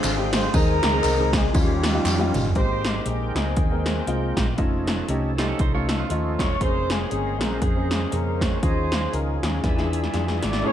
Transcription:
Already playing: D3 G#3 C4 F4 G#4 G5
0.04 G#1, clap, ride, tambourine
0.16 G#3 C4 D4 G4
0.33 C5, snare, ride, tambourine
0.53 D#2 D#3 G#3 C4 D#4 G#4 A#4, kick, ride, tambourine
0.82 C#2, snare, ride, tambourine
0.92 G#3 C4 D#4 G#4
1.04 C2, clap, ride, tambourine
1.17 G#3 C4 D#4 G#4
1.33 G#4, kick, snare, ride, tambourine
1.53 D#2 D#3 G3 A#3 C#4 D#4 E4 F4 G4, kick, ride, tambourine
1.62 F4
1.84 snare, clap, ride, tambourine
1.93 G3 C#4 D#4 F4
2.05 F2, snare, clap, ride, tambourine
2.18 G3 C#4 D#4 F4, high tom
2.34 G1, mid tom, ride, tambourine
2.45 floor tom
2.55 G#1 G#2 G#3 A#3 C4 D#4 G4 A#4 C5 G5, kick, closed hi-hat
2.84 snare, closed hi-hat
3.05 A#1 G#3 A#3 C4 D#4 G#4, closed hi-hat
3.34 C#2 G#3 A#3 C4 D#4, snare, closed hi-hat
3.57 D#2, kick, closed hi-hat
3.71 G#3 A#3 C4 A#4
3.86 snare, closed hi-hat
4.06 C2 G#3 A#3 C4 F4, closed hi-hat
4.37 A#1, kick, snare, closed hi-hat
4.57 F1 F3 A3 C#4 D#4 F4 A4, kick, closed hi-hat
4.87 snare, closed hi-hat
5.08 C2 A3 C#4 D#4 G4, closed hi-hat
5.38 A3 C#4 D#4 F4 G4, snare, closed hi-hat
5.49 C#4 A4
5.59 C2 D#4 C5, kick, closed hi-hat
5.73 A3 C#4 D#4 F4 C#5
5.89 C#4 A4, snare, closed hi-hat
5.99 A3 F4
6.10 D#2 A3 C#4 D#4 F4, closed hi-hat
6.38 E1 C#5, kick, snare, closed hi-hat
6.60 F1 C#3 G#3 A#3 C4 C#4 G#4 A#4 C5, kick, closed hi-hat
6.90 C4 C#4 G#4, snare, closed hi-hat
7.10 G1 A#3 C4 C#4 G#4, closed hi-hat
7.38 A#1 A#3 C4 C#4 G#4 A#4, snare, closed hi-hat
7.62 F2 C4 C#4 G#4, kick, closed hi-hat
7.76 A#3 C4 C#4 G#4
7.91 snare, closed hi-hat
8.11 F2 C#3 A#3 G#4 A#4 C5, closed hi-hat
8.41 C#5, kick, snare, closed hi-hat
8.62 D#2 D#3 F3 C#4 D#4 F4 G#4 C5, kick, closed hi-hat
8.92 snare, closed hi-hat
9.13 C#2 C#4 D#4 F4 A#4, closed hi-hat
9.43 D#2 C#4 D#4 F4 G#4, snare, closed hi-hat
9.63 E2 E3 B3 D4 G#4 E5, kick, snare, closed hi-hat
9.77 D4 E4 F4 G#4, snare
9.93 closed hi-hat
10.04 snare
10.13 F2 D4 E4 F4 G#4, snare, closed hi-hat
10.28 snare
10.43 G#1 D5, snare, closed hi-hat
10.53 snare
10.63 A2 A3 B3 C#4 E4 G#4 C#5

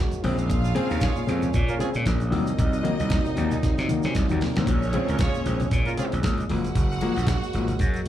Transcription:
Already playing: F#3 G#3 A#3 F#4
0.11 closed hi-hat, shaker
0.23 A#1 A#2 C#3 G#3 C4 C#4 F4 F5, open hi-hat, high conga
0.37 G#3 C4, closed hi-hat, shaker
0.49 A#2, kick, closed hi-hat, muted conga, shaker
0.65 shaker
0.75 C#3 G#3 C4 C#4 F4 G#4, closed hi-hat, muted conga
0.90 D#2 G#3 C4 C#4 F4 A#4, closed hi-hat, shaker
1.01 G#3 C4 F4 G#4 C#5, kick, snare, closed hi-hat, high conga, shaker
1.16 A#2, shaker
1.27 F2 C#3 G#3 C4, closed hi-hat, shaker
1.42 closed hi-hat, low conga, shaker
1.53 A#2, kick, closed hi-hat, shaker
1.69 C#4 F4 A#4, closed hi-hat, shaker
1.79 C#3 G#3 C4 C#4 F4 G#4, closed hi-hat, shaker
1.94 A#2 G#3 C4, closed hi-hat, shaker
2.05 A#1 A#2, kick, snare, closed hi-hat, high conga, shaker
2.20 closed hi-hat, shaker
2.31 C2 D#3 F#3 A#3 D#4 D#5, open hi-hat, high conga
2.46 F#3 A#3, closed hi-hat, shaker
2.57 C2 C3, kick, closed hi-hat, muted conga, shaker
2.73 closed hi-hat, shaker
2.83 D#3 F#3 A#3, closed hi-hat, muted conga
2.98 C2 F#3 A#3, closed hi-hat, shaker
3.10 F#3 A#3, kick, snare, closed hi-hat, high conga, shaker
3.25 C3, closed hi-hat, shaker
3.36 D#2 D#3 F#3 A#3, closed hi-hat, muted conga, shaker
3.51 closed hi-hat, low conga, shaker
3.62 C3, kick, snare, closed hi-hat, shaker
3.78 C3, snare, shaker
3.88 D#3 F#3 A#3, closed hi-hat, low conga, shaker
4.02 C3 C#3 F#3 A#3 C#4, snare, closed hi-hat, shaker
4.15 C2 D#3 D#4, kick, snare, closed hi-hat, high conga, shaker
4.24 F3 F4
4.29 D#2 D#3 F#3 A#3, closed hi-hat, shaker
4.33 F#3 F#4
4.41 C3 G#3 G#4, snare, open hi-hat, high conga
4.50 A#3 A#4
4.56 C2 D#3 F#3 A#3 C4 C5, snare, closed hi-hat, shaker
4.67 A#1 A#2 G#3 C#4 C#5, kick, closed hi-hat, muted conga, shaker
4.83 shaker
4.93 C#3 G#3 C4 C#4 F4 G#4, closed hi-hat, muted conga
5.08 C#2 G#3 C4 C#4 F4 A#4, closed hi-hat, shaker
5.19 C4 F4 G#4 C#5, kick, snare, closed hi-hat, high conga, shaker
5.34 A#2, shaker
5.46 A#1 C#3 G#3 C4, closed hi-hat, muted conga, shaker
5.60 closed hi-hat, low conga, shaker
5.71 A#2, kick, closed hi-hat, shaker
5.85 C#4 F4 A#4, closed hi-hat, shaker
5.97 C#3 G#3 C4 C#4 F4 G#4, closed hi-hat, shaker
6.12 A#1 G#3 C4, closed hi-hat, shaker
6.23 C#2 A#2, kick, snare, closed hi-hat, high conga, shaker
6.38 closed hi-hat, shaker
6.49 F#1 F3 F#3 G#3 A#3 F#4 F#5, open hi-hat, high conga
6.65 G#3 A#3, closed hi-hat, shaker
6.75 F#1, kick, closed hi-hat, muted conga, shaker
6.92 shaker
7.01 F3 G#3 A#3, closed hi-hat, muted conga
7.16 A#1 G#3 A#3, closed hi-hat, shaker
7.27 G#3 A#3, kick, snare, closed hi-hat, high conga, shaker
7.43 shaker
7.53 G#1 F3 G#3 A#3, closed hi-hat, shaker
7.68 closed hi-hat, low conga, shaker
7.79 F#2, kick, closed hi-hat, low conga, shaker
7.94 closed hi-hat, shaker

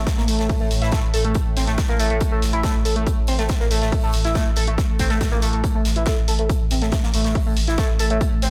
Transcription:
Already playing: A2 A3
0.07 kick, snare, closed hi-hat
0.17 A1 A#3, snare
0.28 A1 A3, closed hi-hat, open hi-hat
0.39 A1 A3, snare, closed hi-hat
0.49 kick, closed hi-hat, open hi-hat
0.60 A1 A3
0.71 A1, closed hi-hat, open hi-hat
0.82 A1 E4, snare, closed hi-hat
0.92 A3, kick, snare, closed hi-hat
1.03 A1
1.14 A1 A4, closed hi-hat, open hi-hat
1.25 A1 A3, closed hi-hat
1.34 kick, closed hi-hat
1.46 A1
1.57 A1 C4, snare, closed hi-hat, open hi-hat
1.67 A1 A3, snare, closed hi-hat
1.78 kick, snare, closed hi-hat
1.89 A1 A#3, snare
1.99 A1 A3, closed hi-hat, open hi-hat
2.10 A1 A3, closed hi-hat
2.21 kick, closed hi-hat
2.32 A1 A3
2.42 A1, snare, closed hi-hat, open hi-hat
2.53 A1 E4, closed hi-hat
2.63 A3, kick, snare, closed hi-hat
2.74 A1
2.85 A1 A4, closed hi-hat, open hi-hat
2.96 A1 A3, closed hi-hat
3.07 kick, closed hi-hat
3.17 A1
3.27 A1 C4, closed hi-hat, open hi-hat
3.38 A1 A3, snare, closed hi-hat
3.49 kick, snare, closed hi-hat
3.60 A1 A#3, snare
3.71 A1 A3, closed hi-hat, open hi-hat
3.82 A1 A3, snare, closed hi-hat
3.92 kick, closed hi-hat, open hi-hat
4.03 A1 A3
4.12 A1, closed hi-hat, open hi-hat
4.25 A1 E4, snare, closed hi-hat
4.35 A3, kick, snare, closed hi-hat
4.46 A1
4.56 A1 A4, closed hi-hat, open hi-hat
4.67 A1 A3, closed hi-hat
4.78 kick, snare, closed hi-hat, swell
4.89 A1
4.99 A1 C4, kick, snare, closed hi-hat, open hi-hat
5.10 A1 A3, snare, closed hi-hat
5.21 kick, snare, closed hi-hat
5.31 A1 A#3, snare
5.42 A1 A3, closed hi-hat, open hi-hat
5.53 A1 A3, closed hi-hat
5.63 A2 A3, kick, closed hi-hat
5.74 A1 A3
5.85 A1, snare, closed hi-hat, open hi-hat
5.96 A1 E4, closed hi-hat
6.06 A3, kick, snare, closed hi-hat
6.17 A1
6.28 A1 A4, closed hi-hat, open hi-hat
6.39 A1 A3, closed hi-hat
6.49 kick, closed hi-hat
6.60 A1
6.71 A1 C4, closed hi-hat, open hi-hat
6.82 A1 A3, snare, closed hi-hat
6.92 A3, kick, snare, closed hi-hat
7.03 A1 A#3, snare
7.14 A1 A3, closed hi-hat, open hi-hat
7.24 A1 A3, snare, closed hi-hat
7.35 kick, closed hi-hat, open hi-hat
7.46 A1 A3
7.57 A1, closed hi-hat, open hi-hat
7.67 A1 E4, snare, closed hi-hat
7.78 A3, kick, snare, closed hi-hat
7.89 A1
7.99 A1 A4, closed hi-hat, open hi-hat
8.10 A1 A3, closed hi-hat
8.21 kick, closed hi-hat
8.32 A1
8.42 A1 C4, snare, closed hi-hat, open hi-hat

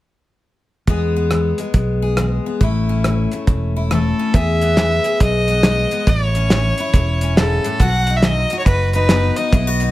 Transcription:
0.87 E2 G#3 B3 G#4, kick, closed hi-hat
1.16 B3
1.31 E3, cross-stick, closed hi-hat
1.58 G#3, closed hi-hat
1.74 B1 B2, kick, closed hi-hat
2.02 G#4
2.17 E3 G#3, cross-stick, closed hi-hat
2.46 B3
2.61 A1 A2 A3 C#4 E4, kick, closed hi-hat
2.89 C#4
3.04 E3, cross-stick, closed hi-hat
3.32 A3, closed hi-hat
3.47 E1 E2, kick, closed hi-hat
3.76 E4
3.91 E3 A3 A4, cross-stick, closed hi-hat
4.19 C#4
4.34 E2 G#4 E5, kick, closed hi-hat
4.62 B3, closed hi-hat
4.77 E3, snare, closed hi-hat
5.04 G#4, closed hi-hat
5.20 B1 B2 D#5, kick, closed hi-hat
5.48 B3, closed hi-hat
5.63 E3 G#3, snare, closed hi-hat
5.91 B3, closed hi-hat
6.07 A1 A2 E4 C#5, kick, closed hi-hat
6.35 C#4, closed hi-hat
6.50 E3, snare, closed hi-hat
6.78 E4, closed hi-hat
6.94 E1 E2, kick, closed hi-hat
7.21 C#4, closed hi-hat
7.37 G#2 A4, snare, closed hi-hat
7.64 A2, closed hi-hat
7.80 B1 B2 F#4 F#5, kick, closed hi-hat
8.07 D#4, closed hi-hat
8.16 E5
8.22 D#3 D#5, snare, closed hi-hat
8.50 F#4, closed hi-hat
8.59 C#5
8.66 F#1 F#2 B4, kick, closed hi-hat
8.93 D#4 B4, closed hi-hat
9.09 D#3 B3, snare, closed hi-hat
9.36 D#4 D#5, closed hi-hat
9.53 B1 B2 E4, kick, closed hi-hat
9.67 F#4
9.80 D#4, closed hi-hat

